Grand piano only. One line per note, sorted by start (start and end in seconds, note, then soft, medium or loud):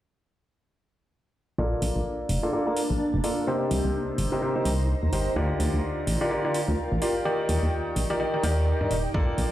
1.58 2.40 A#3 medium
1.58 2.40 F4 medium
1.58 2.40 A4 medium
1.58 2.40 A#4 medium
1.58 2.40 D5 loud
2.43 2.51 A#3 medium
2.43 2.51 F4 medium
2.43 2.51 A4 medium
2.43 2.51 A#4 medium
2.43 2.51 D5 medium
2.53 2.65 A#3 medium
2.53 2.65 F4 medium
2.53 2.65 A4 medium
2.53 2.65 A#4 medium
2.53 2.65 D5 medium
2.67 2.79 A#3 medium
2.67 2.79 F4 medium
2.67 2.79 A4 medium
2.67 2.79 A#4 medium
2.67 2.79 D5 medium
3.24 3.44 F4 medium
3.24 3.44 A4 medium
3.24 3.44 A#4 medium
3.24 3.44 D5 medium
3.47 4.29 C3 medium
3.47 4.29 D#4 medium
3.47 4.29 G4 medium
3.47 4.29 A#4 medium
3.47 4.29 C5 loud
4.32 4.40 C3 medium
4.32 4.40 D#4 medium
4.32 4.40 G4 medium
4.32 4.40 A#4 medium
4.32 4.40 C5 medium
4.42 4.54 C3 medium
4.42 4.54 D#4 medium
4.42 4.54 G4 medium
4.42 4.54 A#4 medium
4.42 4.54 C5 loud
4.56 4.68 C3 medium
4.56 4.68 D#4 medium
4.56 4.68 G4 medium
4.56 4.68 A#4 medium
4.56 4.68 C5 medium
5.13 5.33 D#4 medium
5.13 5.33 G4 medium
5.13 5.33 A#4 medium
5.13 5.33 C5 medium
5.36 6.18 D3 medium
5.36 6.18 F4 medium
5.36 6.18 G4 medium
5.36 6.18 A#4 medium
5.36 6.18 D5 loud
6.21 6.29 D3 medium
6.21 6.29 F4 medium
6.21 6.29 G4 medium
6.21 6.29 A#4 medium
6.21 6.29 D5 loud
6.31 6.43 D3 medium
6.31 6.43 F4 medium
6.31 6.43 G4 medium
6.31 6.43 A#4 medium
6.31 6.43 D5 medium
6.45 6.57 D3 medium
6.45 6.57 F4 medium
6.45 6.57 G4 medium
6.45 6.57 A#4 medium
6.45 6.57 D5 medium
7.02 7.22 F4 medium
7.02 7.22 G4 medium
7.02 7.22 A#4 medium
7.02 7.22 D5 medium
7.25 8.07 D#3 medium
7.25 8.07 D#4 medium
7.25 8.07 G4 medium
7.25 8.07 A#4 medium
7.25 8.07 D5 loud
8.10 8.18 D#3 medium
8.10 8.18 D#4 medium
8.10 8.18 G4 medium
8.10 8.18 A#4 medium
8.10 8.18 D5 loud
8.20 8.32 D#3 medium
8.20 8.32 D#4 medium
8.20 8.32 G4 medium
8.20 8.32 A#4 medium
8.20 8.32 D5 medium
8.34 8.41 D#3 medium
8.34 8.41 D#4 medium
8.34 8.41 G4 medium
8.34 8.41 A#4 medium
8.34 8.41 D5 medium
8.43 8.78 D#3 medium
8.43 8.78 D#4 medium
8.43 8.78 G4 medium
8.43 8.78 A#4 medium
8.43 8.78 D5 loud
8.81 8.93 D#3 medium
8.81 8.93 D#4 medium
8.81 8.93 G4 medium
8.81 8.93 A#4 medium
8.81 8.93 D5 medium
9.14 9.52 A#3 medium
9.14 9.52 F4 medium
9.14 9.52 A4 medium
9.14 9.52 A#4 medium
9.14 9.52 D5 loud